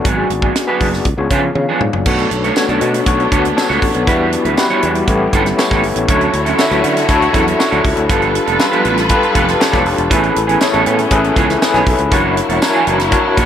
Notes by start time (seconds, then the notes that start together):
0.05 G#1 F#3 B3 D4 G#4, kick, closed hi-hat
0.17 B3 D4 F#4 G#4 D5
0.30 G#1, muted clean electric guitar stroke, closed hi-hat
0.42 F#3 B3 D4 G#4, kick
0.55 muted clean electric guitar stroke, snare, closed hi-hat
0.67 F#3 B3 D4 F#4 G#4 B4 D5
0.80 F#1 F#3 B3 D4 B4, kick, open hi-hat
0.93 muted clean electric guitar stroke, snare
1.05 C#2, kick, closed hi-hat
1.17 C#2 B3 D4 F4 G#4 C#5, muted clean electric guitar stroke
1.30 C#3 F3 B3 D4 G#4, kick, closed hi-hat
1.43 muted clean electric guitar stroke
1.55 C#3 F5, muted clean electric guitar stroke, high tom
1.69 F3 B3 D4 G#4
1.81 G#2 D5, muted clean electric guitar stroke, mid tom
1.93 F#1, muted clean electric guitar stroke, floor tom
2.06 B1 A3 B3 D4 F#4 A4 C#5, kick, crash
2.18 closed hi-hat
2.31 B1, muted clean electric guitar stroke, closed hi-hat
2.44 A3 D4 F#4 C#5, closed hi-hat
2.56 B3 D4 F#4 A4 C#5, muted clean electric guitar stroke, snare, tambourine
2.69 B1 A3 D4 F#4 D5, closed hi-hat
2.81 B2 A3 D4 F#4 D5, closed hi-hat
2.94 muted clean electric guitar stroke, closed hi-hat
3.06 B1 B3 D4 F#4 A4 C#5, kick, closed hi-hat
3.19 muted clean electric guitar stroke, closed hi-hat
3.31 D2 A3 D4 F#4 C#5, kick, closed hi-hat
3.44 muted clean electric guitar stroke, closed hi-hat
3.56 B3 D4 F#4 A4 C#5, muted clean electric guitar stroke, snare, tambourine
3.69 C#2 A3 D4 F#4 C#5, snare
3.82 A1, muted clean electric guitar stroke, kick, open hi-hat
3.94 B1, muted clean electric guitar stroke, closed hi-hat
4.07 E2 E3 G3 B3 D4 E4 F#4 G4 B4 D5, kick, closed hi-hat
4.32 muted clean electric guitar stroke, closed hi-hat
4.45 D2 G3 D4 E4 B4, closed hi-hat
4.57 B3 E4 F#4 G4 B4, muted clean electric guitar stroke, snare, tambourine
4.70 G3 D4 E4 C#5, closed hi-hat
4.83 E2 G3 D4 E4 C#5, closed hi-hat
4.95 muted clean electric guitar stroke, closed hi-hat
5.07 A1 A3 B3 C#4 E4 G4 A4 C#5, kick, closed hi-hat
5.20 muted clean electric guitar stroke
5.33 G1 G3 C#4 E4 A4, kick, closed hi-hat
5.45 muted clean electric guitar stroke, snare, closed hi-hat
5.58 B3 E4 G4 A4 C#5, muted clean electric guitar stroke, snare, tambourine
5.70 A1 G3 C#4 E4 A4, kick, snare
5.83 G1, muted clean electric guitar stroke, open hi-hat
5.96 A1, muted clean electric guitar stroke, closed hi-hat
6.08 D2 D3 F#3 C#4 D4 E4 F#4 A4 C#5, kick, closed hi-hat
6.21 closed hi-hat
6.33 D2, muted clean electric guitar stroke, closed hi-hat
6.45 F#3 C#4 E4 A4, closed hi-hat
6.58 D4 E4 F#4 A4 E5, muted clean electric guitar stroke, snare, tambourine
6.70 D2 F#3 C#4 E4 B4, closed hi-hat
6.83 D3 F#3 C#4 E4 B4, closed hi-hat
6.95 muted clean electric guitar stroke, snare, closed hi-hat
7.09 D2 D4 E4 F#4 A4 C#5, kick, closed hi-hat
7.21 muted clean electric guitar stroke, closed hi-hat
7.33 E2 F#3 C#4 E4 A4, kick, closed hi-hat
7.46 muted clean electric guitar stroke, closed hi-hat
7.58 D4 E4 F#4 A4 C#5, muted clean electric guitar stroke, snare, tambourine
7.71 D2 F#3 C#4 E4 A4, closed hi-hat
7.84 C#2, muted clean electric guitar stroke, kick, open hi-hat
7.96 D2, muted clean electric guitar stroke, closed hi-hat
8.09 G1 F3 G3 B3 D4 F4 G4 A4 B4, kick, closed hi-hat
8.22 closed hi-hat
8.34 muted clean electric guitar stroke, closed hi-hat
8.46 F1 F3 B3 D4 A4, closed hi-hat
8.59 D4 F4 G4 A4 B4, muted clean electric guitar stroke, snare, tambourine
8.72 F3 B3 D4 B4, closed hi-hat
8.84 A1 F3 B3 D4 B4, closed hi-hat
8.97 muted clean electric guitar stroke, snare, closed hi-hat
9.09 D4 F4 G4 A4 B4, kick, closed hi-hat
9.22 muted clean electric guitar stroke, closed hi-hat
9.34 F1 F3 B3 D4 A4, kick, closed hi-hat
9.47 muted clean electric guitar stroke, snare, closed hi-hat
9.59 D4 F4 G4 A4 C#5, muted clean electric guitar stroke, snare, tambourine
9.72 E1 F3 B3 D4 A4, kick, snare, closed hi-hat
9.84 F1, muted clean electric guitar stroke, open hi-hat
9.97 E1, muted clean electric guitar stroke, closed hi-hat
10.10 A1 E3 A3 B3 C#4 E4 G#4 A4 B4, kick, closed hi-hat
10.23 closed hi-hat
10.35 A1, muted clean electric guitar stroke, closed hi-hat
10.47 E3 B3 C#4 G#4, closed hi-hat
10.61 C#4 E4 G#4 A4 C#5, muted clean electric guitar stroke, snare, tambourine
10.73 A1 E3 B3 C#4 A4, closed hi-hat
10.86 A2 E3 B3 C#4 A4, closed hi-hat
10.99 muted clean electric guitar stroke, closed hi-hat
11.11 A1 C#4 E4 G#4 A4 B4, kick, closed hi-hat
11.24 muted clean electric guitar stroke, closed hi-hat
11.36 C#2 E3 B3 C#4 G#4, kick, closed hi-hat
11.49 muted clean electric guitar stroke, snare, closed hi-hat
11.61 C#4 E4 G#4 A4 B4, muted clean electric guitar stroke, snare, tambourine
11.74 B1 E3 B3 C#4 G#4, snare, closed hi-hat
11.86 B1, muted clean electric guitar stroke, kick, open hi-hat
11.98 C#2, muted clean electric guitar stroke, closed hi-hat
12.10 F#1 E3 F#3 A#3 D4 E4 F#4 A#4 C#5, kick, closed hi-hat
12.37 muted clean electric guitar stroke, closed hi-hat
12.49 E1 E3 A#3 D4 F#4, closed hi-hat
12.61 D4 E4 F#4 A#4 C#5, muted clean electric guitar stroke, snare, tambourine
12.74 E3 A#3 D4 G#4
12.86 F#1 E3 A#3 D4 G#4, closed hi-hat
12.99 muted clean electric guitar stroke, snare, closed hi-hat
13.12 D4 E4 F#4 A#4 C#5, kick, closed hi-hat
13.24 muted clean electric guitar stroke
13.37 A#1 E3 A#3 D4 F#4, kick, closed hi-hat